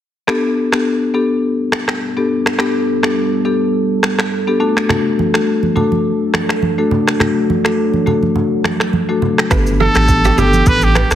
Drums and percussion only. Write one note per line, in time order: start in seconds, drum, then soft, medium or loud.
0.28 finger snap medium
0.28 cross-stick medium
0.72 finger snap medium
0.72 cross-stick medium
1.72 finger snap medium
1.72 cross-stick medium
1.88 finger snap medium
1.88 cross-stick medium
2.46 finger snap medium
2.46 cross-stick medium
2.59 finger snap medium
2.59 cross-stick medium
3.03 finger snap medium
3.03 cross-stick medium
4.03 finger snap medium
4.03 cross-stick medium
4.19 finger snap medium
4.19 cross-stick medium
4.77 finger snap medium
4.77 cross-stick medium
4.89 finger snap medium
4.89 cross-stick medium
4.89 low conga medium
5.19 high conga medium
5.34 finger snap medium
5.34 cross-stick medium
5.63 high conga medium
5.76 low conga medium
5.92 high conga medium
6.34 finger snap medium
6.34 cross-stick medium
6.34 high conga soft
6.49 finger snap medium
6.49 cross-stick medium
6.62 high conga medium
6.91 low conga medium
7.08 finger snap medium
7.08 cross-stick medium
7.20 finger snap medium
7.20 cross-stick medium
7.20 low conga medium
7.50 high conga medium
7.65 finger snap medium
7.65 cross-stick medium
7.94 high conga medium
8.07 low conga medium
8.23 high conga medium
8.36 low conga medium
8.64 finger snap medium
8.64 cross-stick medium
8.64 high conga soft
8.80 finger snap medium
8.80 cross-stick medium
8.93 high conga medium
9.22 low conga medium
9.38 finger snap medium
9.38 cross-stick medium
9.51 finger snap medium
9.51 kick loud
9.51 cross-stick loud
9.51 low conga medium
9.51 shaker medium
9.67 shaker medium
9.81 high conga medium
9.95 finger snap medium
9.95 cross-stick medium
9.95 shaker medium
10.08 kick loud
10.08 shaker medium
10.24 high conga medium
10.24 shaker soft
10.38 low conga medium
10.38 shaker soft
10.53 high conga medium
10.53 shaker soft
10.66 kick loud
10.66 shaker medium
10.81 shaker medium
10.95 finger snap medium
10.95 cross-stick medium
10.95 high conga medium
10.95 shaker medium
11.11 finger snap medium
11.11 cross-stick medium
11.11 shaker medium